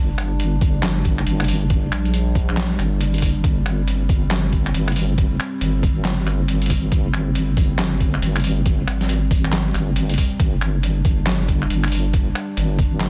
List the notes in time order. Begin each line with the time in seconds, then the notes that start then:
Already playing: G1 G3 D4
0.18 finger snap, closed hi-hat
0.40 closed hi-hat
0.61 kick, open hi-hat
0.83 snare, clap, closed hi-hat
1.05 kick, closed hi-hat
1.18 finger snap
1.27 G1, closed hi-hat
1.40 finger snap, closed hi-hat
1.44 closed hi-hat
1.48 open hi-hat
1.70 kick, closed hi-hat
1.92 A#1, finger snap, closed hi-hat
2.05 closed hi-hat
2.14 closed hi-hat
2.35 kick, open hi-hat
2.49 finger snap
2.57 snare, clap, closed hi-hat
2.79 G1, finger snap, closed hi-hat
3.01 closed hi-hat
3.14 closed hi-hat
3.18 closed hi-hat
3.22 kick, open hi-hat
3.44 G1 C4, kick, closed hi-hat
3.66 finger snap, closed hi-hat
3.88 closed hi-hat
4.09 kick, open hi-hat
4.31 snare, clap, closed hi-hat
4.53 kick, closed hi-hat
4.66 finger snap
4.74 G1, closed hi-hat
4.88 finger snap, closed hi-hat
4.92 closed hi-hat
4.96 open hi-hat
5.18 kick, closed hi-hat
5.40 finger snap, closed hi-hat
5.61 G1, closed hi-hat
5.83 kick, open hi-hat
6.05 snare, clap, closed hi-hat
6.27 finger snap, closed hi-hat
6.48 closed hi-hat
6.62 closed hi-hat
6.66 closed hi-hat
6.70 kick, open hi-hat
6.92 G1, kick, closed hi-hat
7.14 finger snap, closed hi-hat
7.35 closed hi-hat
7.57 kick, open hi-hat
7.79 snare, clap, closed hi-hat
8.00 kick, closed hi-hat
8.14 finger snap
8.22 G1, closed hi-hat
8.36 finger snap, closed hi-hat
8.40 closed hi-hat
8.44 open hi-hat
8.66 kick, closed hi-hat
8.87 G#1, finger snap, closed hi-hat
9.01 snare, closed hi-hat
9.09 closed hi-hat
9.31 kick, open hi-hat
9.44 finger snap
9.53 snare, clap, closed hi-hat
9.74 G1, finger snap, closed hi-hat
9.96 closed hi-hat
10.10 closed hi-hat
10.14 closed hi-hat
10.18 kick, open hi-hat
10.40 G1 G3 D4, kick, closed hi-hat
10.61 finger snap, closed hi-hat
10.83 closed hi-hat
11.05 kick, open hi-hat
11.27 snare, clap, closed hi-hat
11.48 kick, closed hi-hat
11.62 finger snap
11.70 G1, closed hi-hat
11.84 finger snap, closed hi-hat
11.88 closed hi-hat
11.92 open hi-hat
12.13 kick, closed hi-hat
12.35 finger snap, closed hi-hat
12.57 G1, closed hi-hat
12.79 kick, open hi-hat
13.00 snare, clap, closed hi-hat